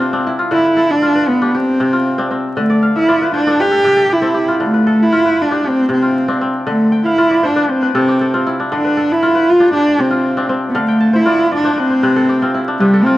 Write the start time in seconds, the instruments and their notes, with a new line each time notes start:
Already playing: kora C3 D4 A4 B4 D5, cello C4
0.00 kora F4
0.13 kora C4 D4
0.27 kora E4
0.39 kora F4
0.51 kora D3, cello E4
0.64 kora B4
0.76 kora A4
0.91 cello D4
1.02 kora F4
1.15 kora B4
1.29 cello B3
1.41 kora D4 G4
1.54 cello C4, kora G4
1.80 kora C3
1.92 kora F4
2.18 kora C4 D4
2.31 kora C4
2.57 kora D3, cello A3
2.69 kora D5
2.82 kora F5
2.95 cello E4, kora E5
3.08 kora F4 D5
3.21 kora B4
3.33 cello D4, kora C5
3.46 kora D4 A4
3.59 cello G4, kora B4
3.71 kora A4
3.84 kora C3 G4
3.96 kora A4
4.09 cello E4, kora G4
4.22 kora C4 A4
4.34 kora G4
4.48 kora F4
4.60 kora D3, cello A3
4.74 kora B4
4.87 kora A4
5.03 cello E4
5.12 kora F4
5.25 kora B4
5.42 cello D4
5.51 kora D4 G4
5.64 kora G4
5.69 cello C4
5.89 kora C3
5.93 cello C4
6.03 kora F4
6.28 kora C4 D4
6.41 kora C4
6.67 kora D3, cello A3
6.92 kora G5
7.06 cello E4, kora F5
7.18 kora F4 E5
7.31 kora D5
7.43 cello D4, kora C5
7.56 kora D4 B4
7.69 cello C4, kora C5
7.82 kora B4
7.95 kora C3 A4, cello C4
8.08 kora G4
8.21 kora A4
8.34 kora C4 F4
8.46 kora E4
8.60 kora D4
8.72 kora D3, cello D4
8.84 kora B4
8.97 kora A4
9.12 cello E4
9.22 kora F4
9.35 kora B4
9.50 cello F4
9.60 kora D4 G4
9.73 cello D4, kora G4
9.98 kora C3, cello C4
10.11 kora F4
10.37 kora C4 D4
10.49 kora C4
10.69 cello B3
10.75 kora D3 F5
10.79 cello A3
10.88 kora G5
11.00 kora A5
11.13 cello E4, kora C5
11.25 kora F4 D5
11.39 kora E5
11.52 cello D4, kora D5
11.64 kora D4 C5
11.73 cello D4
11.78 cello C4, kora B4
11.91 kora C5
12.03 kora C3 B4
12.17 kora A4
12.29 kora G4
12.42 kora C4 F4
12.55 kora E4
12.68 kora D4
12.80 kora C3, cello G3
12.94 kora A4
13.04 cello C4, kora F4